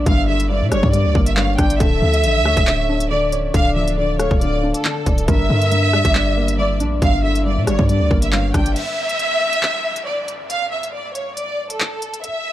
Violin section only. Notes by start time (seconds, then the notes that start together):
0.07 F5
0.28 E5
0.50 D5
0.72 C#5
0.93 D5
1.27 E5
1.37 F5
1.58 G5
1.80 E5
3.11 D5
3.55 F5
3.76 E5
3.98 D5
4.19 C#5
4.41 D5
4.75 A4
5.29 E5
6.58 D5
7.03 F5
7.24 E5
7.46 D5
7.67 C#5
7.89 D5
8.23 E5
8.33 F5
8.54 G5
8.76 E5
10.06 D5
10.50 F5
10.71 E5
10.94 D5
11.15 C#5
11.37 D5
11.71 A4
12.24 E5